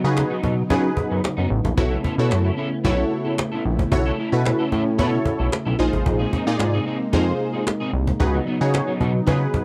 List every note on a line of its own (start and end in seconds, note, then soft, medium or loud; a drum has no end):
0.00 5.76 C#3 medium
0.00 1.76 F#3 medium
0.00 3.88 B3 medium
0.00 1.76 D#4 medium
0.00 muted clean electric guitar stroke soft
0.04 0.24 C#3 loud
0.04 0.36 D#4 loud
0.04 0.36 F#4 medium
0.04 0.36 G#4 medium
0.04 0.36 B4 loud
0.04 cajon slap soft
0.16 muted clean electric guitar stroke soft
0.16 cajon slap medium
0.16 cajon slap loud
0.30 0.42 F#3 medium
0.30 0.42 B3 medium
0.30 0.43 D#4 medium
0.30 cajon slap soft
0.43 0.63 B2 medium
0.43 0.63 F#3 medium
0.43 0.57 B3 medium
0.43 0.56 D#4 medium
0.43 cajon bass medium
0.57 muted clean electric guitar stroke soft
0.69 0.90 C#3 loud
0.69 0.89 F#3 medium
0.69 0.84 B3 medium
0.69 1.21 D#4 loud
0.69 0.84 F4 medium
0.69 1.22 F#4 medium
0.69 1.22 G#4 medium
0.69 1.22 B4 loud
0.69 cajon bass loud
0.84 muted clean electric guitar stroke soft
0.84 cajon slap soft
0.96 muted clean electric guitar stroke soft
0.96 cajon bass loud
1.10 1.21 F#2 medium
1.10 1.22 F#3 soft
1.10 1.23 B3 medium
1.10 1.23 D#4 medium
1.23 muted clean electric guitar stroke soft
1.23 cajon slap medium
1.23 cajon slap loud
1.37 1.47 F#2 medium
1.37 1.49 F#3 medium
1.37 1.50 B3 medium
1.37 1.50 D#4 medium
1.50 1.61 A1 loud
1.50 muted clean electric guitar stroke soft
1.64 1.74 A#1 medium
1.64 muted clean electric guitar stroke soft
1.64 cajon bass loud
1.77 1.97 B1 medium
1.77 5.75 A3 medium
1.77 5.75 E4 medium
1.77 1.97 E4 medium
1.77 1.97 F#4 medium
1.77 1.97 A4 medium
1.77 1.97 C#5 loud
1.77 muted clean electric guitar stroke soft
1.77 cajon bass loud
1.91 2.02 C#4 medium
1.91 2.03 E4 medium
1.91 2.03 A4 medium
2.03 2.19 C#4 medium
2.03 2.17 E4 medium
2.03 2.16 A4 medium
2.03 cajon bass loud
2.18 2.33 B2 loud
2.18 2.50 E4 medium
2.18 2.50 F#4 medium
2.18 2.50 A4 medium
2.18 2.50 C#5 loud
2.18 muted clean electric guitar stroke medium
2.31 2.51 F#2 loud
2.31 muted clean electric guitar stroke soft
2.31 cajon slap medium
2.31 cajon slap loud
2.44 2.56 C#4 medium
2.44 2.56 E4 medium
2.44 2.57 A4 medium
2.57 2.77 C#4 medium
2.57 2.71 E4 medium
2.57 2.70 A4 loud
2.71 muted clean electric guitar stroke soft
2.71 cajon slap soft
2.84 3.04 B1 loud
2.84 3.04 C#4 loud
2.84 3.36 E4 loud
2.84 2.98 E4 loud
2.84 3.36 F#4 medium
2.84 3.36 A4 medium
2.84 2.98 B4 loud
2.84 3.36 C#5 medium
2.84 cajon bass loud
2.98 muted clean electric guitar stroke soft
3.11 muted clean electric guitar stroke soft
3.11 cajon slap soft
3.25 3.36 C#4 medium
3.25 3.37 E4 medium
3.25 3.37 A4 medium
3.25 cajon slap soft
3.37 muted clean electric guitar stroke soft
3.37 cajon slap loud
3.52 3.64 C#4 medium
3.52 3.64 E4 medium
3.52 3.65 A4 medium
3.65 3.85 A#1 loud
3.65 muted clean electric guitar stroke soft
3.65 cajon slap soft
3.79 muted clean electric guitar stroke soft
3.79 cajon bass loud
3.91 4.12 B1 loud
3.91 5.78 C#4 medium
3.91 4.11 E4 medium
3.91 4.11 F#4 medium
3.91 4.12 A4 medium
3.91 4.12 C#5 loud
3.91 muted clean electric guitar stroke soft
3.91 cajon bass loud
4.06 4.17 C#4 medium
4.06 4.18 E4 medium
4.06 4.18 A4 loud
4.18 4.34 C#4 medium
4.18 4.33 E4 medium
4.18 4.32 A4 medium
4.18 cajon slap soft
4.32 4.52 B2 loud
4.32 4.64 E4 medium
4.32 4.64 F#4 medium
4.32 4.64 A4 medium
4.32 4.65 B4 medium
4.32 muted clean electric guitar stroke soft
4.45 muted clean electric guitar stroke soft
4.45 cajon slap medium
4.45 cajon slap loud
4.59 4.70 C#4 medium
4.59 4.71 E4 medium
4.59 4.72 A4 medium
4.71 5.01 A2 loud
4.71 4.91 C#4 medium
4.71 4.85 E4 loud
4.71 4.84 A4 loud
4.71 cajon bass medium
4.85 muted clean electric guitar stroke soft
4.98 5.19 B2 loud
4.98 5.18 C#4 loud
4.98 5.50 E4 loud
4.98 5.13 E4 medium
4.98 5.50 F#4 medium
4.98 5.50 A4 medium
4.98 5.12 B4 loud
4.98 5.50 C#5 medium
4.98 cajon bass loud
5.13 muted clean electric guitar stroke medium
5.25 muted clean electric guitar stroke soft
5.25 cajon bass loud
5.39 5.49 B1 medium
5.39 5.50 C#4 medium
5.39 5.51 E4 medium
5.39 5.51 A4 medium
5.52 muted clean electric guitar stroke soft
5.52 cajon slap loud
5.65 5.76 B1 medium
5.65 5.78 C#4 medium
5.65 5.78 E4 medium
5.65 5.79 A4 medium
5.78 5.90 A#1 loud
5.78 8.18 C3 medium
5.78 8.18 G#3 medium
5.78 8.18 A#3 medium
5.78 6.33 D#4 medium
5.78 8.18 D#4 medium
5.78 6.33 F4 medium
5.78 6.33 G#4 loud
5.78 6.33 C5 loud
5.78 muted clean electric guitar stroke soft
5.92 6.03 A1 medium
5.92 muted clean electric guitar stroke medium
5.92 cajon bass medium
6.05 6.26 A#1 loud
6.05 muted clean electric guitar stroke soft
6.05 cajon bass loud
6.19 6.31 C4 medium
6.19 6.32 D#4 medium
6.19 6.32 G#4 medium
6.32 6.48 C4 medium
6.32 6.46 D#4 medium
6.32 6.45 G#4 medium
6.32 cajon bass loud
6.46 6.56 A#2 loud
6.46 6.78 D#4 medium
6.46 6.79 F4 medium
6.46 6.79 G#4 medium
6.46 6.79 D5 loud
6.46 muted clean electric guitar stroke medium
6.59 6.79 G#2 loud
6.59 muted clean electric guitar stroke soft
6.59 cajon slap loud
6.74 6.84 C4 medium
6.74 6.85 D#4 medium
6.74 6.86 G#4 medium
6.86 7.06 C4 medium
6.86 7.00 D#4 medium
6.86 6.99 G#4 medium
7.00 muted clean electric guitar stroke medium
7.00 cajon slap soft
7.13 7.33 F2 loud
7.13 7.32 C4 medium
7.13 7.64 D#4 medium
7.13 7.27 D#4 medium
7.13 7.64 F4 medium
7.13 7.64 G#4 medium
7.13 7.27 A#4 medium
7.13 7.64 C5 loud
7.13 cajon bass loud
7.27 muted clean electric guitar stroke medium
7.40 muted clean electric guitar stroke soft
7.40 cajon slap soft
7.53 7.65 C4 medium
7.53 7.66 D#4 medium
7.53 7.66 G#4 medium
7.53 cajon slap soft
7.66 muted clean electric guitar stroke soft
7.66 cajon slap loud
7.80 7.92 C4 medium
7.80 7.92 D#4 medium
7.80 7.93 G#4 medium
7.93 8.13 C2 loud
7.93 muted clean electric guitar stroke soft
7.93 cajon slap soft
8.07 muted clean electric guitar stroke soft
8.07 cajon bass medium
8.20 8.40 C#2 loud
8.20 9.64 C#3 medium
8.20 9.64 F#3 medium
8.20 9.64 B3 medium
8.20 8.40 D#4 medium
8.20 9.64 D#4 medium
8.20 8.40 F#4 medium
8.20 8.40 G#4 medium
8.20 8.40 B4 loud
8.20 muted clean electric guitar stroke soft
8.20 cajon bass loud
8.34 8.45 F#3 medium
8.34 8.46 B3 medium
8.34 8.47 D#4 medium
8.46 8.62 F#3 medium
8.46 8.60 B3 medium
8.46 8.59 D#4 medium
8.46 cajon slap soft
8.61 8.81 C#3 loud
8.61 8.93 D#4 medium
8.61 8.93 F#4 medium
8.61 8.93 G#4 medium
8.61 8.93 C#5 medium
8.61 muted clean electric guitar stroke soft
8.61 cajon slap soft
8.73 muted clean electric guitar stroke soft
8.73 cajon slap medium
8.73 cajon slap loud
8.87 8.99 F#3 medium
8.87 9.00 B3 medium
8.87 9.00 D#4 medium
9.00 9.20 B2 medium
9.00 9.20 F#3 medium
9.00 9.15 B3 medium
9.00 9.14 D#4 medium
9.00 cajon bass medium
9.15 muted clean electric guitar stroke soft
9.15 cajon slap soft
9.26 9.47 C#3 loud
9.26 9.47 F#3 medium
9.26 9.41 B3 medium
9.26 9.64 D#4 medium
9.26 9.41 F4 loud
9.26 9.64 F#4 medium
9.26 9.64 G#4 medium
9.26 9.64 B4 loud
9.26 cajon bass loud
9.41 muted clean electric guitar stroke medium
9.54 muted clean electric guitar stroke soft
9.54 cajon bass loud